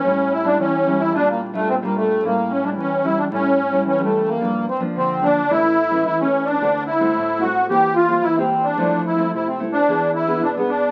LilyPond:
<<
  \new Staff \with { instrumentName = "Accordion" } { \time 4/4 \key a \phrygian \tempo 4 = 110 cis'8 e'16 d'16 cis'8. e'16 d'16 bes8 a16 c'16 bes16 a8 | bes8 cis'16 d'16 cis'8 e'16 d'16 cis'4 cis'16 a8 bes16~ | bes8 c'8 c'8 d'8 e'4 e'16 cis'8 d'16~ | d'8 e'4 fis'8 g'8 f'8 e'16 c'8 d'16~ |
d'8 e'8 e'16 c'8 d'8. e'8 d'16 b16 d'8 | }
  \new Staff \with { instrumentName = "Nylon-string guitar" } { \time 4/4 \key a \phrygian << { <g cis' e'>8. <g cis' e'>8. <g cis' e'>8 <g d' f'>8. <g d' f'>8 <g d' f'>8. | <g cis' e'>8. <g cis' e'>8. <g cis' e'>8 <g cis' e'>8 r16 <g cis' e'>8 <g cis' e'>8. | <f bes d'>8 r16 <f bes d'>8. <f bes d'>16 r16 <e a cis'>8 r16 <e a cis'>8 <e a cis'>8. | <a c' fis'>8 r16 <a c' fis'>8. <a c' fis'>16 r16 <bes c' g'>8. <bes c' g'>8 <bes c' g'>8. |
<a c' e'>8. <a c' e'>8. <a c' e'>16 r16 <b d' gis'>8. <b d' gis'>8 <b d' gis'>8. | } \\ { a,4 e4 bes,4 bes,4 | a,4 e4 a,4 e4 | g,4 d4 a,4 e4 | d4 a,4 e4 e4 |
f4 c4 e4 b,4 | } >> }
>>